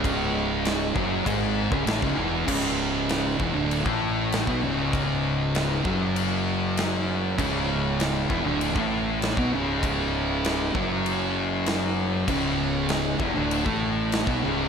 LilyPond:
<<
  \new Staff \with { instrumentName = "Distorted electric guitar" } { \clef bass \time 4/4 \key cis \minor \tempo 4 = 98 <cis, cis>4. <fis, fis>8 <gis, gis>8. <cis, cis>16 <a, a>16 <cis, cis>16 <e, e>8 | <cis, cis>4. <e, e>16 <d, d>8 <a, a>4 <b, b>16 <cis, cis>8~ | <cis, cis>4. <fis, fis>2~ <fis, fis>8 | <cis, cis>4. <e, e>16 <d, d>8 <a, a>4 <b, b>16 <cis, cis>8~ |
<cis, cis>4. <fis, fis>2~ <fis, fis>8 | <cis, cis>4. <e, e>16 <d, d>8 <a, a>4 <b, b>16 <cis, cis>8 | }
  \new Staff \with { instrumentName = "Distorted electric guitar" } { \clef bass \time 4/4 \key cis \minor <cis, cis>4. <fis, fis>8 <gis, gis>8. <cis, cis>16 <a, a>16 <cis, cis>16 <e, e>8 | <cis, cis>4. <e, e>16 <d, d>8 <a, a>4 <b, b>16 <cis, cis>8~ | <cis, cis>4. <fis, fis>2~ <fis, fis>8 | <cis, cis>4. <e, e>16 <d, d>8 <a, a>4 <b, b>16 <cis, cis>8~ |
<cis, cis>4. <fis, fis>2~ <fis, fis>8 | <cis, cis>4. <e, e>16 <d, d>8 <a, a>4 <b, b>16 <cis, cis>8 | }
  \new Staff \with { instrumentName = "Distorted electric guitar" } { \clef bass \time 4/4 \key cis \minor <cis, cis>4. <fis, fis>8 <gis, gis>8. <cis, cis>16 <a, a>16 <cis, cis>16 <e, e>8 | <cis, cis>4. <e, e>16 <d, d>8 <a, a>4 <b, b>16 <cis, cis>8~ | <cis, cis>4. <fis, fis>2~ <fis, fis>8 | <cis, cis>4. <e, e>16 <d, d>8 <a, a>4 <b, b>16 <cis, cis>8~ |
<cis, cis>4. <fis, fis>2~ <fis, fis>8 | <cis, cis>4. <e, e>16 <d, d>8 <a, a>4 <b, b>16 <cis, cis>8 | }
  \new Staff \with { instrumentName = "Fingered electric bass" } { \clef bass \time 4/4 \key cis \minor cis,,4. fis,,8 gis,,8. cis,,16 a,,16 cis,,16 e,,8 | cis,,4. e,,16 d,,8 a,,4 b,,16 cis,,8~ | cis,,4. fis,,2~ fis,,8 | cis,,4. e,,16 d,,8 a,,4 b,,16 cis,,8~ |
cis,,4. fis,,2~ fis,,8 | cis,,4. e,,16 d,,8 a,,4 b,,16 cis,,8 | }
  \new DrumStaff \with { instrumentName = "Drums" } \drummode { \time 4/4 <cymc bd>4 <cymc sn>8 bd8 <cymc bd>8. bd16 <cymc sn>16 bd8. | <cymc bd>4 <cymc sn>8 bd8 cymc16 bd8. <cymc sn>16 bd8. | <cymc bd>4 <cymc sn>8 bd8 cymc4 <cymc sn>4 | <cymc bd>4 <cymc sn>8 bd8 cymc16 bd8. <cymc sn>16 bd8. |
<cymc bd>4 <cymc sn>8 bd8 cymc4 <cymc sn>4 | <cymc bd>4 <cymc sn>8 bd8 cymc16 bd8. <cymc sn>16 bd8. | }
>>